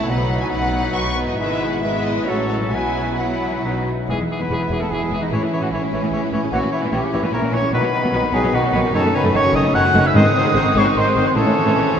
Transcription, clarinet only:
0.09 1.23 D#4 medium
1.40 1.80 E4 medium
1.84 2.27 E4 soft
2.29 2.75 F#4 soft
2.74 3.19 E4 soft
3.21 3.66 E4 soft
3.64 3.87 D#4 soft
4.09 4.23 G#4 medium
4.40 4.82 B4 medium
4.80 4.92 A4 medium
4.91 5.20 G#4 medium
5.21 5.30 D#4 medium
5.31 5.61 E4 medium
5.61 5.73 F#4 medium
5.71 6.32 E4 medium
6.53 6.71 F#4 medium
6.72 6.96 E4 medium
6.95 7.25 G4 medium
7.23 7.33 B4 medium
7.33 7.55 A#4 medium
7.53 7.73 C#5 medium
7.74 8.33 B4 medium
8.35 8.57 G#4 medium
8.55 8.97 F#4 medium
8.95 9.15 A4 medium
9.16 9.37 B4 medium
9.36 9.57 C#5 loud
9.55 9.74 D#5 loud
9.75 10.08 F#5 loud
10.06 10.18 E5 medium
10.16 10.77 D#5 loud
10.77 10.86 C#5 medium
10.97 11.26 C5 medium
11.26 11.31 C5 medium
11.37 11.99 A4 medium

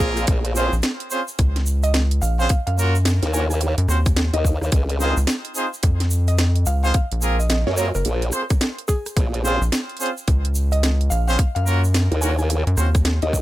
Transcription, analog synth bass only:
0.73 0.81 A#1 loud
1.39 2.20 C#2 loud
2.22 2.48 A#1 loud
2.67 3.20 F#2 loud
3.78 3.87 F#2 loud
3.88 4.31 D#2 medium
5.17 5.26 C#2 loud
5.83 6.65 F2 loud
6.67 6.93 C#2 loud
7.12 7.64 A#1 loud
7.95 8.04 F#1 loud
9.61 9.70 A#1 loud
10.28 11.09 C#2 loud
11.11 11.37 A#1 loud
11.56 12.09 F#2 loud
12.67 12.76 F#2 loud
12.77 13.20 D#2 medium

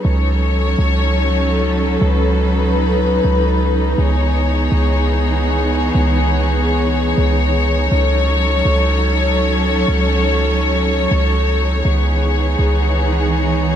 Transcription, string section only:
0.04 3.94 F#3 medium
0.04 3.94 C#4 medium
0.04 11.81 D#4 medium
0.04 3.94 A4 medium
0.04 1.99 C#5 medium
2.02 3.96 B4 medium
3.98 7.88 E3 medium
3.98 7.88 B3 medium
3.98 7.88 G#4 medium
3.98 13.76 C#5 medium
7.92 11.81 F#3 medium
7.92 11.81 C#4 medium
7.92 11.81 A4 medium
11.85 13.76 E3 medium
11.85 13.76 B3 medium
11.85 13.76 D#4 medium
11.85 13.76 G#4 medium

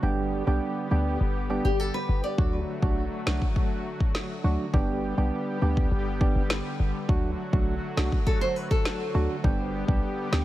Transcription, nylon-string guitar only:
1.65 1.80 G4 medium
1.80 1.94 A4 medium
1.94 2.22 B4 medium
2.24 2.52 D5 medium
8.27 8.41 A4 medium
8.41 8.56 C5 medium
8.56 8.70 B4 medium
8.71 9.41 A4 medium

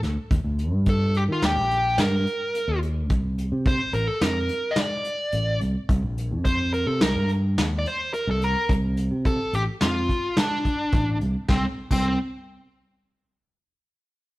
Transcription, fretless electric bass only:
0.03 0.16 D2 medium
0.31 0.44 D#2 medium
0.44 0.72 D2 medium
0.72 1.26 G2 medium
1.28 1.41 D#3 medium
1.42 1.56 D#2 medium
1.56 1.96 A#1 medium
1.98 2.25 G2 medium
2.68 3.10 D#2 medium
3.10 3.50 C2 medium
3.52 3.79 C3 medium
3.93 4.07 A1 medium
4.21 4.48 F2 medium
5.33 5.60 A1 medium
5.61 5.74 C2 medium
5.89 6.02 C2 medium
6.02 6.33 A#1 medium
6.31 6.84 F2 medium
6.87 7.00 C3 medium
7.01 7.14 C2 medium
7.15 7.55 G2 medium
7.58 7.84 D#2 medium
8.27 8.54 C2 medium
8.69 9.09 C2 medium
9.11 9.37 C3 medium
9.53 9.66 A1 medium
9.81 10.08 F2 medium
10.93 11.19 A1 medium
11.22 11.34 C2 medium
11.49 11.64 C2 medium
11.90 12.16 C2 medium

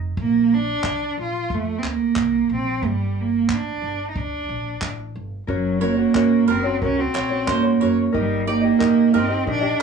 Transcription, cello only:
0.20 0.55 A#3 medium
0.53 1.18 D4 loud
1.21 1.56 F4 medium
1.54 1.80 A3 medium
1.78 1.89 C4 medium
1.88 2.52 A#3 medium
2.54 2.88 C4 medium
2.87 3.22 G3 medium
3.21 3.54 A#3 medium
3.53 4.10 D4 medium
4.10 4.19 D#4 medium
4.18 4.83 D4 medium
5.50 5.84 F#3 medium
5.82 6.52 A#3 medium
6.51 6.83 C4 medium
6.83 7.02 C#4 medium
7.00 7.52 C4 medium
7.51 8.00 A#3 medium
8.18 8.47 G3 medium
8.50 9.19 A#3 loud
9.17 9.49 C4 medium
9.50 9.82 D4 loud

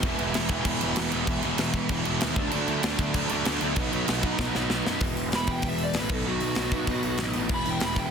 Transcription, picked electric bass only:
0.03 0.14 E1 medium
0.22 0.32 E1 medium
0.37 0.47 E1 medium
0.50 0.61 E1 medium
0.65 0.76 E1 medium
0.83 0.93 E1 medium
0.98 1.08 E1 medium
1.13 1.23 E1 medium
1.27 1.38 E1 medium
1.43 1.54 E1 medium
1.59 1.80 E1 loud
1.90 2.00 E1 medium
2.07 2.17 E1 medium
2.23 2.33 D#2 medium
2.37 2.48 D2 loud
2.52 2.63 D2 loud
2.68 2.79 D2 medium
2.84 2.94 D2 loud
2.99 3.10 D2 medium
3.14 3.25 D2 loud
3.32 3.42 D2 medium
3.47 3.57 D2 medium
3.62 3.73 D2 medium
3.76 3.87 B1 medium
3.93 4.04 B1 medium
4.09 4.30 B1 medium
4.40 4.50 B1 medium
4.56 4.66 B1 medium
4.71 4.81 B1 loud
4.87 4.97 F#2 medium
5.01 5.17 E1 medium
5.18 5.33 E1 medium
5.34 5.47 E1 medium
5.47 5.63 E1 medium
5.63 5.93 E1 medium
5.95 6.09 A1 medium
6.10 6.25 B1 medium
6.26 6.41 B1 loud
6.43 6.56 B1 medium
6.57 6.72 B1 loud
6.72 6.87 B1 medium
6.87 7.03 B2 medium
7.04 7.19 B1 medium
7.21 7.35 A1 medium
7.37 7.49 A1 medium
7.50 7.65 E1 medium
7.67 7.81 E1 medium
7.83 7.96 E1 medium
7.97 8.11 E1 medium

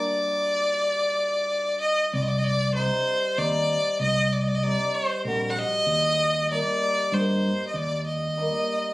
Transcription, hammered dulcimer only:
0.00 0.30 G3 medium
2.75 3.36 G3 medium
2.75 3.07 C4 medium
2.75 3.07 D#4 medium
3.37 4.62 G3 medium
3.37 3.69 C4 medium
3.37 3.70 D#4 medium
4.63 5.26 G3 medium
4.63 4.95 C4 medium
4.63 4.95 D#4 medium
5.27 5.93 G3 medium
5.27 5.58 C4 medium
5.27 5.58 F#4 medium
6.51 7.13 G3 medium
6.51 6.82 A#3 medium
6.51 6.82 D#4 medium
7.14 8.37 G3 medium
7.14 7.45 A#3 medium
7.14 7.45 D#4 medium
8.37 8.94 G3 medium
8.37 8.68 A#3 medium
8.37 8.68 D#4 medium

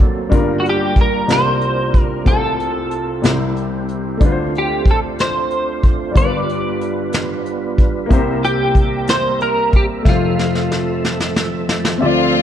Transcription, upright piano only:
0.00 0.28 D2 medium
0.00 0.28 D3 medium
0.00 0.31 A#3 medium
0.00 0.29 D4 medium
0.00 0.32 F#4 medium
0.00 0.32 C5 medium
0.29 1.25 G1 medium
0.29 1.25 G2 medium
0.29 1.28 G3 medium
0.29 1.26 D4 medium
0.29 1.27 F4 medium
0.29 1.30 A#4 medium
1.26 2.22 C2 soft
1.26 2.22 C3 soft
1.26 2.25 A#3 soft
1.26 2.26 D4 soft
1.26 2.25 F4 soft
1.26 2.26 C5 medium
2.24 3.20 C2 medium
2.24 3.19 C3 medium
2.24 3.22 A3 medium
2.24 3.22 C4 soft
2.24 3.24 F4 soft
2.28 3.25 C5 medium
3.22 4.17 C2 medium
3.22 4.17 C3 medium
3.22 4.20 G3 medium
3.22 4.21 C4 soft
3.22 4.21 E4 medium
3.26 4.22 C5 medium
4.17 6.10 A3 medium
4.17 6.11 D4 medium
4.22 6.12 D2 medium
4.22 6.12 D3 medium
4.22 6.13 F4 medium
4.22 4.30 B4 medium
4.32 6.17 C5 medium
6.11 8.06 G1 medium
6.11 8.06 G2 soft
6.11 8.05 G3 medium
6.11 8.06 D4 medium
6.17 8.07 F4 soft
6.17 6.24 A#4 soft
6.25 8.12 B4 medium
8.06 9.99 A#3 medium
8.06 10.01 E4 medium
8.10 10.01 C2 medium
8.10 10.01 C3 medium
8.10 10.02 G4 medium
8.10 10.03 C5 medium
10.03 11.97 F1 medium
10.03 11.95 A3 medium
10.03 11.96 E5 medium
10.07 11.97 F2 medium
10.07 11.98 F4 medium
10.07 11.99 C5 medium
11.98 12.42 D2 medium
11.98 12.42 C4 medium
11.98 12.42 E5 medium
12.02 12.42 D3 medium
12.02 12.42 F4 medium
12.02 12.42 D5 medium

